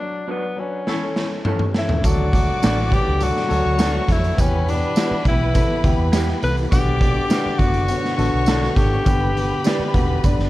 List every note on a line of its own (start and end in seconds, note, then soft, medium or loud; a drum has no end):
0.00 0.21 F#3 medium
0.00 0.21 D4 medium
0.00 0.29 D4 medium
0.00 0.22 D5 medium
0.27 0.50 F#3 medium
0.27 0.61 B3 medium
0.27 0.42 D4 medium
0.27 0.50 D4 medium
0.27 0.42 F#4 medium
0.27 0.42 B4 medium
0.27 0.51 D5 medium
0.27 0.42 D5 medium
0.56 0.79 F#3 medium
0.56 1.46 C#4 medium
0.56 0.80 D4 medium
0.56 0.80 B4 medium
0.87 1.09 E3 medium
0.87 1.09 C#4 medium
0.87 1.29 E4 medium
0.87 1.29 A4 medium
0.87 1.10 A4 loud
0.87 1.29 C#5 medium
0.87 snare medium
1.16 1.39 E3 medium
1.16 1.39 C#4 medium
1.16 1.39 A4 medium
1.16 snare medium
1.45 1.67 E3 medium
1.45 1.68 C#4 medium
1.45 1.59 C#4 medium
1.45 1.60 E4 medium
1.45 1.68 A4 medium
1.45 1.60 A4 medium
1.45 1.60 C#5 medium
1.45 mid tom medium
1.59 mid tom medium
1.74 1.97 E3 medium
1.74 1.97 C#4 medium
1.74 2.07 E4 medium
1.74 1.97 A4 medium
1.74 snare medium
1.89 floor tom medium
2.03 2.48 D2 loud
2.03 4.36 D3 medium
2.03 2.26 F#3 medium
2.03 4.36 A3 medium
2.03 2.26 D4 medium
2.03 4.36 F#4 medium
2.03 2.95 F#4 loud
2.03 2.27 A4 loud
2.03 3.47 D5 medium
2.03 3.47 D6 medium
2.03 kick loud
2.03 closed hi-hat medium
2.03 tambourine medium
2.33 2.55 F#3 medium
2.33 2.56 D4 medium
2.33 2.56 A4 medium
2.33 kick medium
2.33 closed hi-hat medium
2.62 2.97 A1 medium
2.62 2.84 F#3 medium
2.62 2.85 D4 medium
2.62 2.76 D4 medium
2.62 2.85 E4 medium
2.62 2.76 F#4 medium
2.62 2.77 A4 medium
2.62 2.77 D5 loud
2.62 snare loud
2.62 closed hi-hat medium
2.62 tambourine loud
2.91 3.13 F#3 medium
2.91 3.14 D4 medium
2.91 3.25 G4 loud
2.91 3.14 B4 medium
2.91 kick loud
2.91 closed hi-hat medium
3.08 3.29 C#2 medium
3.20 3.43 F#3 medium
3.20 3.43 D4 medium
3.20 4.13 F#4 loud
3.20 3.43 A4 medium
3.20 closed hi-hat medium
3.20 tambourine medium
3.37 snare soft
3.49 3.62 D2 loud
3.49 3.72 F#3 loud
3.49 3.72 D4 medium
3.49 3.72 A4 loud
3.49 4.36 C#5 medium
3.49 4.36 C#6 medium
3.49 closed hi-hat medium
3.66 3.99 D2 medium
3.77 4.00 F#3 loud
3.77 4.01 D4 medium
3.77 3.93 D4 medium
3.77 3.93 F#4 medium
3.77 4.01 A4 loud
3.77 3.93 A4 loud
3.77 3.94 D5 loud
3.77 snare loud
3.77 closed hi-hat medium
3.77 tambourine medium
4.07 4.31 F2 medium
4.07 4.30 F#3 medium
4.07 4.30 D4 medium
4.07 4.31 A4 medium
4.07 kick medium
4.07 snare soft
4.07 closed hi-hat medium
4.12 4.42 E4 medium
4.24 closed hi-hat medium
4.36 4.83 E2 loud
4.36 4.59 E3 loud
4.36 6.70 E3 medium
4.36 4.60 B3 medium
4.36 10.50 B3 medium
4.36 4.60 G4 loud
4.36 6.71 G4 medium
4.36 6.68 B4 medium
4.36 6.68 B5 loud
4.36 kick loud
4.36 closed hi-hat medium
4.36 tambourine medium
4.41 4.71 C#4 medium
4.67 4.89 E3 medium
4.67 4.90 B3 medium
4.67 5.27 D4 medium
4.67 4.90 G4 medium
4.67 closed hi-hat medium
4.96 5.19 E3 medium
4.96 5.19 B3 medium
4.96 5.10 E4 medium
4.96 5.20 F#4 medium
4.96 5.11 G4 medium
4.96 5.11 B4 medium
4.96 5.11 E5 medium
4.96 snare loud
4.96 closed hi-hat medium
4.96 tambourine loud
5.11 muted fingered electric bass stroke soft
5.25 5.59 B1 medium
5.25 5.48 E3 medium
5.25 5.48 B3 medium
5.25 6.13 E4 medium
5.25 5.48 G4 medium
5.25 kick medium
5.25 closed hi-hat medium
5.54 5.77 E3 medium
5.54 5.77 B3 medium
5.54 5.77 A4 medium
5.54 kick loud
5.54 closed hi-hat medium
5.54 tambourine medium
5.83 5.95 D2 medium
5.83 6.06 E3 loud
5.83 6.06 B3 medium
5.83 6.07 G4 loud
5.83 kick loud
5.83 closed hi-hat medium
5.98 6.32 E2 medium
6.12 6.35 E3 loud
6.12 6.35 B3 loud
6.12 6.27 E4 medium
6.12 6.36 G4 loud
6.12 6.27 G4 medium
6.12 6.27 B4 medium
6.12 6.28 E5 loud
6.12 snare loud
6.12 closed hi-hat medium
6.12 tambourine medium
6.28 snare soft
6.42 6.65 C2 medium
6.42 6.64 E3 medium
6.42 6.65 B3 medium
6.42 6.65 A4 medium
6.42 6.56 B4 loud
6.42 closed hi-hat medium
6.57 closed hi-hat soft
6.71 7.17 B1 loud
6.71 6.94 D3 medium
6.71 10.50 D3 medium
6.71 6.95 B3 medium
6.71 9.05 D4 medium
6.71 6.95 F#4 loud
6.71 7.60 G4 loud
6.71 7.87 D5 medium
6.71 7.87 D6 medium
6.71 kick loud
6.71 closed hi-hat medium
6.71 tambourine medium
7.00 7.23 D3 medium
7.00 7.23 B3 medium
7.00 7.24 F#4 medium
7.00 kick medium
7.00 closed hi-hat medium
7.29 7.52 D3 medium
7.29 7.52 B3 medium
7.29 7.44 D4 medium
7.29 7.53 F#4 medium
7.29 7.45 F#4 medium
7.29 7.45 B4 medium
7.29 7.45 D5 medium
7.29 snare loud
7.29 closed hi-hat medium
7.29 tambourine loud
7.46 muted fingered electric bass stroke soft
7.57 7.93 F#1 medium
7.57 7.81 D3 medium
7.57 7.81 B3 medium
7.57 8.16 F#4 medium
7.57 7.82 F#4 medium
7.57 kick medium
7.57 closed hi-hat medium
7.74 closed hi-hat medium
7.88 8.11 D3 medium
7.88 8.11 B3 medium
7.88 8.12 F#4 medium
7.88 9.05 C#5 medium
7.88 9.05 C#6 medium
7.88 closed hi-hat medium
7.88 tambourine medium
8.05 snare soft
8.17 8.30 A1 loud
8.17 8.40 D3 medium
8.17 8.41 B3 medium
8.17 8.77 F#4 medium
8.17 8.41 A4 loud
8.17 closed hi-hat medium
8.34 8.67 B1 medium
8.46 8.70 D3 loud
8.46 8.70 B3 medium
8.46 8.62 D4 medium
8.46 8.62 F#4 loud
8.46 8.70 A4 loud
8.46 8.62 B4 medium
8.46 8.62 D5 loud
8.46 snare loud
8.46 closed hi-hat medium
8.46 tambourine medium
8.63 snare soft
8.76 8.99 G#1 medium
8.76 8.99 D3 medium
8.76 8.99 B3 medium
8.76 10.50 G4 loud
8.76 8.99 A4 medium
8.76 kick loud
8.76 snare soft
8.76 closed hi-hat medium
9.04 9.51 G1 loud
9.04 9.28 D3 loud
9.04 9.28 B3 medium
9.04 9.28 G4 loud
9.04 10.50 G4 medium
9.04 10.50 B4 medium
9.04 10.50 B5 loud
9.04 kick loud
9.04 closed hi-hat medium
9.04 tambourine medium
9.35 9.58 D3 medium
9.35 9.58 B3 medium
9.35 9.59 G4 medium
9.35 closed hi-hat medium
9.64 9.87 D3 medium
9.64 9.87 B3 medium
9.64 9.79 D4 medium
9.64 9.87 D4 medium
9.64 9.79 G4 medium
9.64 9.79 B4 medium
9.64 9.80 D5 loud
9.64 snare loud
9.64 closed hi-hat medium
9.64 tambourine loud
9.79 muted fingered electric bass stroke soft
9.94 10.17 E1 medium
9.94 10.17 D3 medium
9.94 10.17 B3 medium
9.94 10.17 F#4 loud
9.94 kick medium
9.94 closed hi-hat medium
10.24 10.35 F#1 loud
10.24 10.46 D3 medium
10.24 10.47 B3 medium
10.24 10.47 D4 loud
10.24 kick medium
10.24 closed hi-hat medium
10.24 tambourine medium
10.39 10.50 G1 loud
10.39 snare soft